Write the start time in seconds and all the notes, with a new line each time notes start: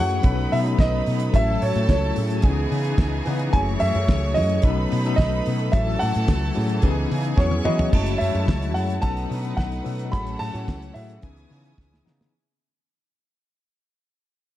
Already playing: F#2 E3 F#3 A3 C#4 E4 F#4 G#4 C#5 F#5 C#6
0.11 closed hi-hat
0.22 B1 F#3 A3 B3 C#4 D#4 A4 B4 B5, kick, closed hi-hat
0.52 B2 E5, open hi-hat
0.64 F#3 B3 C#4 D#4 A4, closed hi-hat
0.79 B1 D#5, kick, snare, closed hi-hat
1.06 B2, open hi-hat
1.20 closed hi-hat
1.33 A1 F#3 A3 C#4 E4 A4 E5 A5, kick, closed hi-hat
1.62 A2 C#5, open hi-hat
1.76 A2, closed hi-hat
1.89 C#2 C#5, kick, snare, closed hi-hat
2.15 A2 F#3 A3 C#4 E4 G#4, open hi-hat
2.30 closed hi-hat
2.42 C#2 C#3 E3 B3 C#4 D#4 G#4 G#5, kick, closed hi-hat
2.72 C#3, open hi-hat
2.85 closed hi-hat
2.98 C#2, kick, snare, closed hi-hat
3.25 C#3 E3 B3 C#4 D#4 B4, open hi-hat
3.39 closed hi-hat
3.53 F#1 F#3 A3 C#4 E4 G#4 C#5 G#5 C#6, kick, closed hi-hat
3.80 F#2 E5, open hi-hat
3.95 F#2, closed hi-hat
4.08 C#2, kick, snare, closed hi-hat
4.34 F#2 F#3 A3 C#4 E4 G#4 D#5, open hi-hat
4.49 closed hi-hat
4.62 B1 F#3 A3 B3 C#4 D#4 A4 B4 B5, kick, closed hi-hat
4.92 B2, open hi-hat
5.04 F#3 B3 C#4 D#4 A4, closed hi-hat
5.16 B1 D#5, kick, snare, closed hi-hat
5.46 B2, open hi-hat
5.59 closed hi-hat
5.72 A1 E3 F#3 A3 C#4 E4 A4 E5 A5, kick, closed hi-hat
5.99 A2 F#5, open hi-hat
6.15 A2, closed hi-hat
6.28 C#2, kick, snare, closed hi-hat
6.55 A2 F#3 A3 C#4 E4 G#4, open hi-hat
6.69 closed hi-hat
6.82 C#2 C#3 E3 B3 C#4 D#4 G4 G#4 G#5, kick, closed hi-hat
6.91 G#4
7.11 C#3, open hi-hat
7.25 closed hi-hat
7.37 E2 E3 F#3 B3 C#4 E4 G#4 C#5 C#6, kick, snare
7.51 high tom
7.64 E3 F#3 B3 C#4 E4 G#4 D#5, mid tom
7.79 floor tom
7.92 F#1 F#3 G#3 A3 C#4 E4 F#4 C#5 A5, kick, crash
8.06 closed hi-hat
8.18 F#2 E5, open hi-hat
8.33 F#2 F#3 G#3 A3 C#4 E4, closed hi-hat
8.48 C#2, kick, snare, closed hi-hat
8.62 closed hi-hat
8.74 F#2 F#3 A3 C#4 E4 G#4 F#5, open hi-hat
8.90 closed hi-hat
9.02 B1 F#3 A3 B3 C#4 D#4 A4 B4 F#5 A5, kick, closed hi-hat
9.17 closed hi-hat
9.30 B2 F#3 B3 C#4 D4 A4, open hi-hat
9.37 D#4
9.45 closed hi-hat
9.57 B1 F#5, kick, snare, closed hi-hat
9.72 closed hi-hat
9.84 B2 F#3 B3 C#4 D#4 A4, open hi-hat
9.99 closed hi-hat
10.12 A1 E3 F#3 A3 C#4 E4 G#4 A4 F#5 B5, kick, closed hi-hat
10.27 closed hi-hat
10.39 A2 A5, open hi-hat
10.53 A2 F#3 A3 C#4 E4 A4, closed hi-hat
10.68 C#2, kick, snare, closed hi-hat
10.82 closed hi-hat
10.94 A2 F#3 A3 C#4 E4 G#4 E5, open hi-hat
11.10 closed hi-hat
11.22 C#2 C#3 E3 B3 C#4 D#4 E4 G#4 G#5 D#6, kick, closed hi-hat
11.37 closed hi-hat
11.50 C#3 D#3 B3 C#4 D#4 G#4, open hi-hat
11.56 E3
11.65 closed hi-hat
11.78 C#2, kick, snare
11.94 snare
12.05 C#3 E3 B3 C#4 D#4 G#4, snare
12.21 snare